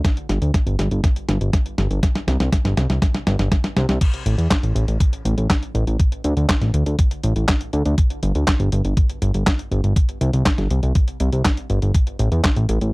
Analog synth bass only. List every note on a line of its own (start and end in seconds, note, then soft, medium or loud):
0.29 0.39 G1 medium
0.42 0.51 D2 medium
0.67 0.76 G1 medium
0.79 0.89 G1 medium
0.91 1.01 G1 medium
1.29 1.38 G1 medium
1.41 1.51 G1 medium
1.78 1.88 G1 medium
1.90 2.00 G1 medium
2.28 2.37 C2 medium
2.40 2.50 C2 medium
2.65 2.74 G1 medium
2.77 2.87 C2 medium
2.90 2.99 C2 medium
3.27 3.37 G1 medium
3.39 3.49 G1 medium
3.76 3.86 C2 loud
3.89 3.98 C2 medium
4.26 4.36 A1 medium
4.38 4.48 E2 medium
4.63 4.73 A1 medium
4.75 4.85 A1 loud
4.88 4.98 A1 medium
5.25 5.35 A1 medium
5.38 5.47 A1 medium
5.75 5.84 A1 medium
5.87 5.97 A1 medium
6.24 6.34 D2 medium
6.37 6.46 D2 medium
6.61 6.71 A1 medium
6.74 6.84 D2 medium
6.86 6.96 D2 medium
7.24 7.33 A1 medium
7.36 7.46 A1 medium
7.73 7.83 D2 loud
7.86 7.95 D2 medium
8.23 8.32 G1 medium
8.35 8.45 D2 medium
8.60 8.70 G1 medium
8.72 8.82 G1 medium
8.85 8.94 G1 medium
9.22 9.32 G1 medium
9.34 9.44 G1 medium
9.71 9.81 G1 medium
9.84 9.94 G1 medium
10.21 10.31 C2 medium
10.34 10.43 C2 medium
10.58 10.68 G1 medium
10.71 10.80 C2 medium
10.83 10.93 C2 medium
11.20 11.30 C2 medium
11.33 11.42 C2 medium
11.70 11.79 G1 medium
11.82 11.92 G1 medium
12.19 12.29 A1 medium
12.32 12.41 E2 medium
12.56 12.66 A1 medium
12.69 12.79 A1 loud
12.82 12.91 A1 medium